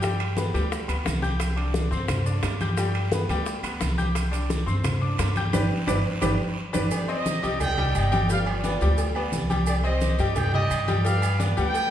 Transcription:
Already playing: upright bass G2
0.02 grand piano G3 G4 G5, high bongo, high conga, high timbale, maracas
0.20 high bongo, high conga, high timbale, claves
0.37 grand piano B3 B4 B5, high bongo, high conga, short guiro, maracas
0.54 upright bass D2, grand piano G3 G4 G5, high bongo, high conga, high timbale, short guiro, maracas
0.71 high bongo, high conga, long guiro, maracas
0.88 upright bass D2, grand piano B3 B4 B5, high conga, high timbale, claves, maracas
1.05 upright bass C2, high bongo, low bongo, high conga, high timbale, short guiro, maracas
1.22 grand piano G4 G5 G6, high bongo, high conga, short guiro, maracas
1.39 high bongo, high conga, high timbale, claves, maracas
1.56 grand piano D4 D5 D6, high bongo, high conga, high timbale
1.74 high bongo, high conga, short guiro, maracas
1.91 upright bass G2, grand piano C4 C5 C6, high bongo, short guiro, maracas
2.08 high bongo, high conga, low conga, high timbale, long guiro, claves, maracas
2.26 grand piano D4 D5 D6, high conga, maracas
2.43 upright bass G2, high bongo, low bongo, high conga, high timbale, low timbale, short guiro, claves, maracas
2.61 grand piano G4 G5 G6, high bongo, high conga, high timbale, short guiro, maracas
2.77 grand piano G3 G4 G5, high bongo, high conga, high timbale, long guiro, maracas
2.94 high bongo, high conga, high timbale, claves
3.12 grand piano B3 B4 B5, high bongo, high conga, short guiro, maracas
3.29 upright bass D2, grand piano G3 G4 G5, high bongo, high conga, high timbale, short guiro, maracas
3.46 high bongo, high conga, long guiro, maracas
3.63 upright bass D2, grand piano B3 B4 B5, high conga, high timbale, claves, maracas
3.81 upright bass C2, high bongo, low bongo, high conga, high timbale, short guiro, maracas
3.98 grand piano G4 G5 G6, high bongo, high conga, short guiro, maracas
4.15 high bongo, high conga, high timbale, long guiro, claves, maracas
4.31 grand piano D4 D5 D6, high bongo, high conga, high timbale, maracas
4.50 high bongo, high conga, short guiro, maracas
4.66 upright bass G2, grand piano C4 C5 C6, high bongo, short guiro, maracas
4.84 high bongo, high conga, low conga, high timbale, long guiro, claves, maracas
5.01 grand piano D4 D5 D6, high conga
5.18 upright bass G2, high bongo, low bongo, high conga, high timbale, low timbale, short guiro, claves, maracas
5.36 grand piano G4 G5 G6, high bongo, high conga, high timbale, short guiro, maracas
5.53 upright bass G1, grand piano G4 B4 D5, low bongo, high conga, high timbale, long guiro, claves, maracas
5.87 upright bass G1, grand piano G4 B4 D5, low bongo, high conga, high timbale, long guiro, claves, maracas
6.22 upright bass G1, grand piano G4 B4 D5, low bongo, high conga, high timbale, long guiro, claves, maracas
6.73 upright bass G1, grand piano G4 B4 D5, low bongo, high conga, high timbale, long guiro, claves, maracas
6.91 trumpet section G4 D5, cowbell, high conga, low agogo, long guiro, claves, maracas
7.08 grand piano C4 C5 D#5, trumpet section G4 D#5, high conga, low agogo
7.26 cowbell, high conga, short guiro, maracas
7.43 upright bass C2, grand piano G3 G4 G5, cowbell, short guiro, maracas
7.60 trumpet section D5 D#5 G5, cowbell, high conga, low conga, low agogo, long guiro, claves, maracas
7.78 grand piano G3 G4 G5, high conga, low conga
7.95 upright bass G1, trumpet section D5 D#5 G5, cowbell, high conga, low agogo, short guiro, claves, maracas
8.12 grand piano G3 G4 G5, cowbell, high conga, low agogo, short guiro, maracas
8.29 grand piano G3 G4 G5, trumpet section B4 D5 F5, cowbell, high conga, maracas
8.46 trumpet section F4 B4 D5, high conga, low agogo, claves
8.64 grand piano B3 B4 D5, cowbell, high conga, low agogo, short guiro, maracas
8.81 upright bass D2, grand piano G3 G4 G5, cowbell, high conga, short guiro, maracas
8.98 cowbell, high conga, low agogo, long guiro, maracas
9.15 grand piano B3 B4 D5, high conga, low agogo, claves
9.32 upright bass C2, cowbell, high conga, short guiro, maracas
9.50 grand piano G3 G4 G5, high conga, low agogo, short guiro, maracas
9.66 trumpet section G4 D5, cowbell, high conga, low agogo, long guiro, claves, maracas
9.84 grand piano C4 C5 D#5, trumpet section G4 D#5, low agogo
10.01 cowbell, high conga, short guiro, maracas
10.19 upright bass G2, grand piano G3 G4 G5, cowbell, short guiro, maracas
10.35 trumpet section D5 D#5 G5, cowbell, high conga, low conga, low agogo, long guiro, claves, maracas
10.53 grand piano G3 G4 G5, trumpet section G4 D#5, high conga, low conga
10.70 upright bass G2, cowbell, high conga, low agogo, short guiro, claves, maracas
10.88 grand piano G3 G4 G5, cowbell, high conga, low agogo, short guiro, maracas
11.05 grand piano G3 G4 G5, trumpet section B4 D5 F5, cowbell, high conga, long guiro, maracas
11.22 high conga, low agogo, claves, maracas
11.39 grand piano B3 B4 D5, cowbell, high conga, low agogo, short guiro, maracas
11.57 upright bass D2, grand piano G3 G4 G5, trumpet section B4 D5 G5, cowbell, high conga, short guiro, maracas
11.74 cowbell, low agogo, long guiro, maracas

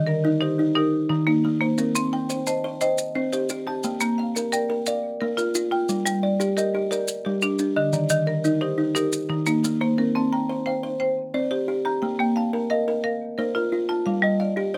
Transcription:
Already playing: marimba D#3, kalimba D#5
0.07 marimba A#4, kalimba A#4
0.25 kalimba D#4
0.41 marimba D#4 G4, kalimba C5
0.59 kalimba D#4
0.75 marimba D#4 A#4, kalimba G4
1.09 kalimba D#3, marimba D#4
1.27 marimba A#3, kalimba D#4
1.45 kalimba A#3
1.61 marimba A#3, kalimba C5
1.78 kalimba C4, marimba A#4, maracas
1.95 marimba C4, kalimba C6, maracas
2.13 marimba G5, kalimba G5
2.30 kalimba C5, maracas
2.47 marimba C5 D#5, kalimba A5, maracas
2.64 kalimba C5
2.81 marimba C5 G5, kalimba D#5, maracas
2.98 maracas
3.15 kalimba C4, marimba C5
3.33 marimba G4, kalimba C5, maracas
3.49 kalimba G4, maracas
3.67 marimba G4, kalimba A5
3.83 kalimba A#3, marimba G5, maracas
4.01 marimba A#3, kalimba A#5, maracas
4.18 marimba F5, kalimba F5
4.36 kalimba A#4, maracas
4.52 marimba A#4 D5, kalimba G5, maracas
4.70 kalimba A#4
4.86 marimba A#4 F5, kalimba D5, maracas
5.21 kalimba A#3, marimba A#4
5.37 marimba F4, kalimba A#4, maracas
5.55 kalimba F4, maracas
5.71 marimba F4, kalimba G5
5.89 kalimba G3, maracas
6.06 marimba G3, kalimba G5, maracas
6.23 kalimba D5, marimba D5
6.40 kalimba G4, maracas
6.57 marimba G4 A#4, kalimba D#5, maracas
6.75 kalimba G4
6.91 marimba G4 D5, kalimba A#4, maracas
7.08 maracas
7.25 kalimba G3, marimba G4
7.42 marimba D4, kalimba G4, maracas
7.59 kalimba D4, maracas
7.76 marimba D3, kalimba D#5
7.93 kalimba D#3, marimba D5, maracas
8.10 marimba D#3, kalimba D#5, maracas
8.27 kalimba A#4, marimba A#4
8.44 kalimba D#4, maracas
8.61 marimba D#4 G4, kalimba C5
8.78 kalimba D#4
8.95 marimba D#4 A#4, kalimba G4, maracas
9.12 maracas
9.30 kalimba D#3, marimba D#4
9.46 marimba A#3, kalimba D#4, maracas
9.64 kalimba A#3, maracas
9.81 marimba A#3, kalimba C5
9.98 kalimba C4, marimba A#4
10.15 marimba C4, kalimba A5
10.33 marimba G5, kalimba A#5
10.50 kalimba C5
10.66 marimba C5 G5, kalimba F5
10.83 kalimba C5
11.00 marimba C5 G5
11.34 kalimba C4 D5, marimba C5
11.51 marimba G4, kalimba C5
11.68 kalimba G4
11.85 marimba G4, kalimba A#5
12.02 kalimba A#3, marimba G5
12.19 marimba A#3, kalimba G5
12.36 marimba F5, kalimba A5
12.53 kalimba A#4
12.70 marimba A#4 F5, kalimba D#5
12.88 kalimba A#4
13.04 marimba A#4 F5
13.38 kalimba A#3 C5, marimba A#4
13.55 marimba F4, kalimba A#4
13.72 kalimba F4
13.89 marimba F4, kalimba A5
14.06 kalimba G3, marimba F5
14.22 marimba G3, kalimba D#5
14.40 marimba D5, kalimba F5
14.57 kalimba G4
14.74 marimba G4 D5, kalimba C5

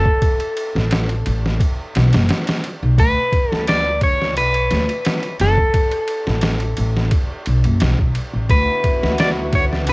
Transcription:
Already playing: clean electric guitar A4
0.06 kick
0.22 kick, ride
0.40 ride
0.57 ride
0.75 upright bass A1, snare
0.91 snare, ride
1.09 ride
1.26 upright bass A1, ride
1.46 snare
1.60 kick, ride
1.95 upright bass B1, snare, ride
2.13 upright bass F#1, snare, ride
2.29 snare, ride
2.47 snare, ride
2.64 ride
2.83 upright bass B1
2.98 upright bass D2, clean electric guitar B4, kick, ride
3.32 kick, ride
3.52 upright bass D2, clean electric guitar A4, snare
3.67 clean electric guitar D5, snare, ride
4.01 upright bass D2, clean electric guitar C#5, kick, ride
4.22 snare
4.36 upright bass B1, clean electric guitar B4, ride
4.54 ride
4.71 upright bass D2, snare, ride
4.89 ride
5.05 snare, ride
5.23 ride
5.39 upright bass F#1, clean electric guitar A4, snare, ride
5.57 kick
5.74 kick, ride
5.91 ride
6.08 ride
6.27 upright bass A1, snare
6.41 snare, ride
6.60 ride
6.77 upright bass A1, ride
6.97 snare
7.11 kick, ride
7.46 upright bass B1, ride
7.64 upright bass F#1, ride
7.80 upright bass B1, snare, ride
7.99 upright bass B1, kick
8.15 ride
8.33 upright bass A1
8.50 upright bass D2, string section D3 B3 E4 F#4, clean electric guitar B4, kick, ride
8.84 kick, ride
9.03 upright bass D2, snare
9.18 clean electric guitar D5, snare, ride
9.53 upright bass D2, clean electric guitar C#5, kick, ride
9.73 snare
9.87 upright bass B1, string section C#4 A4, clean electric guitar B4, ride

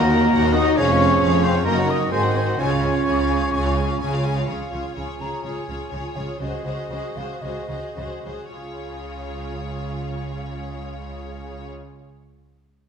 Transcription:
Already playing: double bass section D#2, cello section D#2, bassoon F#3, french horn section A#3, clarinet F#4, oboe A#4, flute A#5
0.00 viola section F#4, violin section F#4 D#5
0.11 viola section D#4, violin section A#4 F#5
0.21 viola section F#4, violin section F#4 D#5
0.33 cello section D#2, double bass section D#2, viola section D#4, violin section A#4 F#5
0.43 viola section F#4, violin section F#4 D#5
0.53 french horn section D#4, viola section D#4, violin section A#4 F#5, oboe D#5, flute D#6
0.66 violin section F#4 D#5, viola section F#4
0.77 double bass section F1, cello section F2, bassoon F3, french horn section C#4, viola section C#4, clarinet G#4, violin section G#4 F5, oboe C#5, flute C#6
0.89 viola section F4, violin section F4 C#5
1.00 viola section C#4, violin section G#4 F5
1.11 viola section F4, violin section F4 C#5
1.21 double bass section F1, cello section F2, viola section C#4, violin section G#4 F5
1.33 violin section F4 C#5, viola section F4
1.43 french horn section C4, viola section C#4, violin section G#4 F5, oboe C5, flute C6
1.54 violin section F4 C#5, viola section F4
1.65 double bass section F#1, cello section F#2, bassoon D#3, french horn section A#3, viola section C#4, clarinet F#4, violin section A#4 D#5, oboe A#4, flute A#5
1.76 viola section D#4, violin section F#4 C#5
1.88 viola section C#4, french horn section D#4, violin section A#4 D#5, oboe D#5, flute D#6
1.98 viola section D#4, violin section F#4 C#5
2.10 double bass section G#1, cello section G#2, bassoon D#3, viola section C4, french horn section C4, clarinet F#4, violin section G#4 G#5, oboe C5, flute C6
2.22 viola section D#4, violin section F#4 F#5
2.34 viola section C4, french horn section C4, violin section G#4 G#5, oboe C5, flute C6
2.46 viola section D#4, violin section F#4 F#5
2.58 double bass section C#2, bassoon C#3, cello section C#3, viola section C#4, french horn section C#4, clarinet F4, violin section G#4 G#5, oboe C#5, flute C#6
2.70 viola section F4, violin section C#5 F5
2.82 viola section C#4, violin section G#4 G#5
2.93 viola section F4, violin section C#5 F5
3.06 double bass section C#2, cello section C#3, viola section C#4, violin section G#4 G#5
3.17 viola section F4, violin section C#5 F5
3.29 viola section C#4, violin section G#4 G#5
3.41 viola section F4, violin section C#5 F5
3.52 double bass section C#2, cello section C#3, viola section C#4, violin section G#4 G#5
3.64 viola section F4, violin section C#5 F5
3.76 viola section C#4, violin section G#4 G#5
3.87 viola section F4, violin section C#5 F5
4.00 double bass section C#2, cello section C#3, viola section C#4, violin section G#4 G#5
4.11 viola section F4, violin section C#5 F5
4.24 viola section C#4, violin section G#4 G#5
4.36 viola section F4, violin section C#5 F5
4.47 double bass section C#2, cello section C#3, viola section F4, violin section G#4 C#5, flute F5
4.71 double bass section C#2, cello section C#3, viola section F4, violin section G#4 C#5
4.95 double bass section C#2, cello section C#3, viola section F4, violin section G#4 C#5, flute G#5
5.20 double bass section C#2, cello section C#3, viola section F4, violin section G#4 C#5, flute A#5
5.44 double bass section C#2, cello section C#3, viola section F4, violin section G#4 C#5, flute G#5
5.68 double bass section C#2, cello section C#3, viola section F4, violin section G#4 C#5
5.91 double bass section C#2, cello section C#3, viola section F4, violin section G#4 C#5
6.15 double bass section C#2, cello section C#3, viola section F4, violin section G#4 C#5, flute C#5
6.40 double bass section C#2, cello section C#3, viola section F#4, violin section G#4 C5, flute D#5
6.65 double bass section C#2, cello section C#3, viola section F#4, violin section G#4 C5
6.90 double bass section C#2, cello section C#3, viola section F#4, violin section G#4 C5
7.16 double bass section C#2, cello section C#3, viola section F#4, violin section G#4 C5, flute F5
7.42 double bass section C#2, cello section C#3, viola section F#4, violin section G#4 C5, flute D#5
7.68 double bass section C#2, cello section C#3, viola section F#4, violin section G#4 C5
7.96 double bass section C#2, cello section C#3, viola section F#4, violin section G#4 C5
8.25 double bass section C#2, cello section C#3, viola section F#4, violin section G#4 C5
8.52 double bass section C#2, cello section C#3, viola section F4, violin section G#4 C#5, flute F5

